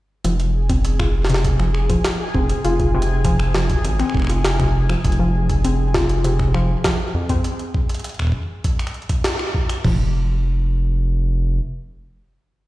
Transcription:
0.24 F1 F3 G#4 G#5, closed hi-hat
0.40 closed hi-hat
0.70 C4, kick, closed hi-hat
0.85 closed hi-hat
1.00 F4, finger snap, kick
1.25 snare
1.29 C3, closed hi-hat
1.34 snare
1.45 kick, closed hi-hat
1.60 F3, finger snap
1.75 finger snap
1.89 F3, kick, closed hi-hat
2.05 snare, closed hi-hat
2.35 F1 C4, kick
2.50 closed hi-hat
2.65 F1 F4, closed hi-hat
2.80 kick, closed hi-hat
2.94 C3
3.02 closed hi-hat
3.25 F3, kick, closed hi-hat
3.40 finger snap
3.55 F3, snare
3.70 kick, closed hi-hat
3.85 G#1, closed hi-hat
3.99 C4, finger snap, closed hi-hat
4.10 finger snap
4.15 F1, finger snap, kick
4.17 finger snap
4.20 finger snap
4.22 finger snap
4.25 finger snap
4.27 F4, finger snap, closed hi-hat
4.45 snare, closed hi-hat
4.60 C3, finger snap, kick, closed hi-hat
4.89 F3, finger snap
5.04 F1, kick, closed hi-hat
5.12 closed hi-hat
5.19 F3
5.50 kick, closed hi-hat
5.65 C4, closed hi-hat
5.94 F4, kick, snare
6.09 closed hi-hat
6.24 C3, closed hi-hat
6.39 finger snap, kick
6.54 F3, finger snap
6.84 F3, kick, snare, closed hi-hat
7.14 F2
7.29 C4, kick, closed hi-hat
7.44 closed hi-hat
7.59 closed hi-hat
7.74 kick
7.89 closed hi-hat
7.94 closed hi-hat
7.99 closed hi-hat
8.04 closed hi-hat
8.09 closed hi-hat
8.14 closed hi-hat
8.19 finger snap, kick
8.22 kick
8.24 kick
8.27 kick
8.29 kick
8.32 kick
8.64 kick, closed hi-hat
8.79 finger snap, closed hi-hat
8.87 finger snap, closed hi-hat
8.94 closed hi-hat
9.02 closed hi-hat
9.09 kick, closed hi-hat
9.24 snare, closed hi-hat
9.39 finger snap
9.55 kick
9.69 finger snap, closed hi-hat
9.84 F1 F3, kick, floor tom, crash

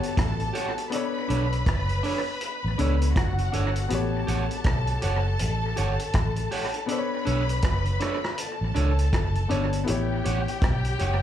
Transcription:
Already playing: B3 F#4 G4 A4 B4 C#5 A5
0.03 closed hi-hat
0.17 A1, kick, cross-stick, closed hi-hat
0.40 closed hi-hat
0.53 G4 C#5 F#5, closed hi-hat
0.78 closed hi-hat
0.90 B3 D4 A4 B4 B5, closed hi-hat
0.96 C#5
1.29 B1 D4 A4 C#5, closed hi-hat
1.53 closed hi-hat
1.66 F#1, kick, cross-stick, closed hi-hat
1.89 closed hi-hat
2.03 D4 A4 C#5, open hi-hat
2.41 closed hi-hat
2.64 A1
2.78 C#2 B3 D4 A4 C#5, closed hi-hat
3.02 closed hi-hat
3.16 F#1 F#4 F#5, kick, cross-stick, closed hi-hat
3.38 closed hi-hat
3.52 G1 D4 A4 C#5, closed hi-hat
3.76 closed hi-hat
3.89 A1 B3 F#4 G4 A4 A5, closed hi-hat
3.94 C#5
4.27 A1 G4 C#5 F#5, closed hi-hat
4.51 closed hi-hat
4.64 B1, kick, cross-stick, closed hi-hat
4.87 closed hi-hat
5.02 F#1 G4 C#5 F#5, closed hi-hat
5.39 A1, closed hi-hat
5.76 G1 G4 C#5 F#5, closed hi-hat
5.99 closed hi-hat
6.13 A1, kick, cross-stick, closed hi-hat
6.36 closed hi-hat
6.51 G4 C#5 F#5, open hi-hat
6.74 closed hi-hat
6.86 B3 D4 A4 B4 B5, closed hi-hat
6.92 C5
6.98 C#5
7.25 B1 D4 A4 C#5, closed hi-hat
7.49 closed hi-hat
7.62 F#1, kick, cross-stick, closed hi-hat
7.85 closed hi-hat
8.00 D4 A4 C#5, cross-stick, closed hi-hat
8.24 cross-stick
8.38 A4 A5, closed hi-hat
8.61 A1
8.75 C#2 D4 A4 C#5, closed hi-hat
8.99 closed hi-hat
9.13 F#1, kick, cross-stick, closed hi-hat
9.35 closed hi-hat
9.48 G1 B3 D4 A4 C#5, closed hi-hat
9.73 closed hi-hat
9.84 B3 E4 G4 G5, closed hi-hat
9.88 A1 G4 C#5
10.24 A1 G4 C#5 F#5, closed hi-hat
10.48 closed hi-hat
10.62 B1, kick, cross-stick, closed hi-hat
10.85 closed hi-hat
10.99 F#1 G4 C#5 F#5, closed hi-hat

